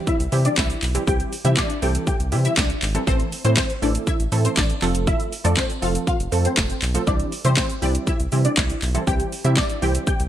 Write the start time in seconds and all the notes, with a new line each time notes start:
Already playing: E3 G3 C4 E4 G4
0.07 E4 E5, kick, shaker
0.20 C2, closed hi-hat, shaker
0.32 C3 E3 G3 C4 E4 G4, open hi-hat, shaker
0.45 D4 D5, closed hi-hat, shaker
0.57 C2 E4 E5, kick, snare, clap, tambourine, shaker
0.70 closed hi-hat, shaker
0.82 B1, clap, open hi-hat, shaker
0.95 E3 G3 C4 E4 G4, closed hi-hat, shaker
1.07 C2 E3 G3 C4 E4 G4 G5, kick, shaker
1.20 closed hi-hat, shaker
1.33 open hi-hat, shaker
1.45 C3 E3 G3 C4 E4 G4 E5, closed hi-hat, shaker
1.57 D4 D5, kick, snare, clap, tambourine, shaker
1.70 closed hi-hat, shaker
1.82 C2 E3 G3 C4 E4 G4 A4 G5, open hi-hat, shaker
1.95 closed hi-hat, shaker
2.07 G4 G5, kick, shaker
2.20 C2, closed hi-hat, shaker
2.32 C3 E3 G3 C4 E4 G4, open hi-hat, shaker
2.45 E4 E5, closed hi-hat, shaker
2.57 C2 D4 D5, kick, snare, clap, tambourine, shaker
2.70 closed hi-hat, shaker
2.82 G#1, clap, open hi-hat, shaker
2.95 E3 G3 C4 E4 A4, closed hi-hat, shaker
3.07 A1 E3 A3 C4 E4 A4 C5, kick, shaker
3.20 closed hi-hat, shaker
3.32 open hi-hat, shaker
3.44 A2 E3 A3 C4 E4 C5, closed hi-hat, shaker
3.57 C4 C5, kick, snare, clap, tambourine, shaker
3.70 closed hi-hat, shaker
3.82 A1 E3 A3 C4 D4 E4 A4 D5, open hi-hat, shaker
3.95 closed hi-hat, shaker
4.07 E4 E5, kick, shaker
4.20 A1, closed hi-hat, shaker
4.32 A2 E3 A3 C4 E4 A4, open hi-hat, shaker
4.45 C4 C5, closed hi-hat, shaker
4.57 A1 D4 D5, kick, snare, clap, tambourine, shaker
4.70 closed hi-hat, shaker
4.82 F1 F3 A3 C4 F4 A4, clap, open hi-hat, shaker
4.95 closed hi-hat, shaker
5.07 E4 E5, kick, shaker
5.20 closed hi-hat, shaker
5.33 open hi-hat, shaker
5.44 F2 F3 A3 C4 D4 F4 A4 D5, closed hi-hat, shaker
5.57 C4 C5, kick, snare, clap, tambourine, shaker
5.70 closed hi-hat, shaker
5.82 F1 F3 A3 C4 F4 A4 F5, open hi-hat, shaker
5.95 closed hi-hat, shaker
6.07 F4 F5, kick, shaker
6.20 F1, closed hi-hat, shaker
6.32 F2 F3 A3 C4 F4 A4, open hi-hat, shaker
6.45 C4 C5, closed hi-hat, shaker
6.57 F1, kick, snare, clap, tambourine, shaker
6.70 closed hi-hat, shaker
6.82 B1, clap, open hi-hat, shaker
6.94 F3 A3 C4 F4 A4, closed hi-hat, shaker
7.07 C2 E3 G3 C4 D4 E4 G4 D5, kick, shaker
7.20 closed hi-hat, shaker
7.32 open hi-hat, shaker
7.44 C3 E3 G3 C4 E4 G4 C5, closed hi-hat, shaker
7.57 C4 C5, kick, snare, clap, tambourine, shaker
7.70 closed hi-hat, shaker
7.82 C2 E3 G3 C4 D4 E4 G4 D5, open hi-hat, shaker
7.95 closed hi-hat, shaker
8.07 E4 E5, kick, shaker
8.20 C2, closed hi-hat, shaker
8.32 C3 E3 G3 C4 E4 G4, open hi-hat, shaker
8.45 D4 D5, closed hi-hat, shaker
8.57 C2 E4 E5, kick, snare, clap, tambourine, shaker
8.70 closed hi-hat, shaker
8.82 B1, clap, open hi-hat, shaker
8.95 E3 G3 C4 E4 A4, closed hi-hat, shaker
9.07 C2 E3 G3 C4 E4 G4 G5, kick, shaker
9.20 closed hi-hat, shaker
9.32 open hi-hat, shaker
9.44 C3 E3 G3 C4 E4 G4 E5, closed hi-hat, shaker
9.57 D4 D5, kick, snare, clap, tambourine, shaker
9.70 closed hi-hat, shaker
9.82 C2 E3 G3 C4 E4 G4 G5, open hi-hat, shaker
9.95 closed hi-hat, shaker
10.07 G4 G5, kick, shaker
10.20 C2, closed hi-hat, shaker